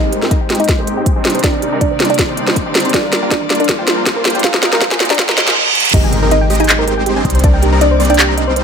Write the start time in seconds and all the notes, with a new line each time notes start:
Already playing: G#2 G#3 A#3 C4 D#4 G4 A#4 D#5, riser
0.04 G#5
0.12 D#5, closed hi-hat
0.22 G#3 C4 D#4 G4 A#4, snare
0.31 D#4 A#4 D#5, kick, closed hi-hat
0.41 G5
0.50 G#3 C4 D#4 G4 D#5, snare, closed hi-hat
0.55 closed hi-hat
0.60 D#4 D#5 G#5, closed hi-hat
0.64 closed hi-hat
0.69 D#5, kick, snare, closed hi-hat
0.78 G#3 C4 D#4 G4 A#4 C5
0.87 A#4, closed hi-hat
0.97 G5
1.06 G4, kick, closed hi-hat
1.16 G3 C4 D4 D#4 C5 G#5
1.25 C3 D#3 G3 D5 D#5, snare, closed hi-hat
1.30 closed hi-hat
1.35 C5, closed hi-hat
1.39 closed hi-hat
1.44 C4 D4 D#4 A#4 D5, kick, snare, closed hi-hat
1.54 G5
1.62 G4, closed hi-hat
1.72 G3 C4 D4 D#4 A#4 A#5
1.81 D4 D5 D#5, kick, closed hi-hat
1.91 C5
2.00 G3 C4 D4 D#4 C5 D5, snare, closed hi-hat
2.05 closed hi-hat
2.10 D4 D5 G5, closed hi-hat
2.14 closed hi-hat
2.19 kick, snare, closed hi-hat
2.29 G3 C4 D4 D#4 C5 A#5
2.37 D#5, closed hi-hat
2.47 C5, snare
2.56 C5, kick, closed hi-hat
2.66 G3 C4 D4 D#4 C5 G5
2.75 G4, snare, closed hi-hat
2.80 closed hi-hat
2.85 A#5, closed hi-hat
2.89 closed hi-hat
2.94 G2 G3 D4 F4 D5 F5, kick, snare, closed hi-hat
3.04 A#4
3.13 A#4, snare, closed hi-hat
3.22 G3 A#3 D4 F4 A#4 G5
3.31 D4 F4 D5, kick, snare, closed hi-hat
3.41 A#5
3.50 G3 A#3 D4 F4 D5 F5, snare, closed hi-hat
3.55 closed hi-hat
3.60 D4 A#4 D5, closed hi-hat
3.64 closed hi-hat
3.69 A#4, kick, snare, closed hi-hat
3.79 G3 A#3 D4 F4 C5 G5
3.88 F4, snare, closed hi-hat
3.98 A#5
4.06 F5, kick, snare, closed hi-hat
4.16 G3 A#3 D4 F4 A#4 C5
4.25 snare, closed hi-hat
4.30 closed hi-hat
4.35 G5, closed hi-hat
4.39 closed hi-hat
4.44 A#2 F3 G#3 A#3 C4 D#4 F4 A#4 F5, kick, snare, closed hi-hat
4.54 A#5, snare
4.63 F5, snare, closed hi-hat
4.72 G#3 A#3 D#4 F4 A#4, snare
4.81 F4 A#4 F5, kick, snare, closed hi-hat
4.91 G#5, snare
5.00 G#3 A#3 D#4 F4 D5, snare, closed hi-hat
5.05 closed hi-hat
5.10 D4 D5 A#5, snare, closed hi-hat
5.14 closed hi-hat
5.19 F5, kick, snare, closed hi-hat, reverse cymbal
5.29 G#3 A#3 D#4 F4 A#4 C5, snare
5.38 D#5, snare, closed hi-hat
5.48 A#4, snare
5.75 closed hi-hat
5.80 closed hi-hat
5.85 closed hi-hat
5.89 closed hi-hat
5.94 G#1 G#3 C4 D#4 G4 A#4 D#5, kick, closed hi-hat, crash, impact
6.04 G#5
6.13 D#5, closed hi-hat
6.22 G#3 C4 D#4 G4 A#4
6.31 D#4 D#5, closed hi-hat
6.41 G5
6.50 G#3 C4 D#4 G4 D#5, open hi-hat
6.55 closed hi-hat
6.60 D#4 D#5 G#5, closed hi-hat
6.64 closed hi-hat
6.69 D#5, clap, closed hi-hat
6.79 G#3 C4 D#4 G4 A#4 C5
6.88 A#4, closed hi-hat
6.98 G5
7.06 G4, closed hi-hat
7.16 G3 C4 D4 D#4 C5 G#5
7.25 C2 C3 D#3 G3 A#3 D5 D#5, kick, closed hi-hat
7.30 closed hi-hat
7.35 C5, closed hi-hat
7.39 closed hi-hat
7.44 G3 C4 D4 D#4 A#4 C5 D5, kick, closed hi-hat
7.54 G5
7.63 G4, closed hi-hat
7.72 G3 C4 D4 D#4 A#4 A#5
7.81 D4 D5 D#5, closed hi-hat
7.91 C5
8.00 G3 C4 D4 D#4 C5 D5, open hi-hat
8.05 closed hi-hat
8.10 D4 D5 G5, closed hi-hat
8.14 closed hi-hat
8.19 G4, clap, closed hi-hat
8.29 G3 C4 D4 D#4 C5 A#5
8.38 D#5, closed hi-hat
8.47 C5
8.56 C5, closed hi-hat